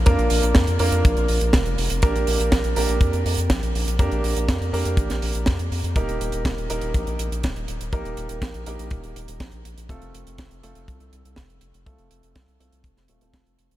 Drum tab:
HH |xxoxxxoxxxoxxxox|xxoxxxoxxxoxxxox|xxoxxxoxxxoxxxox|xxxxxxxxxxxxxxxx|
SD |----o-------o---|----o-------o---|----o----o--o---|----o-------o---|
BD |o---o---o---o---|o---o---o---o---|o---o---o---o---|o---o---o---o---|

HH |xxxxxxxxxxxxxxxx|xxxxxxxxxxxxxxxx|xxxxxxxxxxxxxxxx|
SD |----o-------o---|----o-------o---|----o----o--o---|
BD |o---o---o---o---|o---o---o---o---|o---o---o---o---|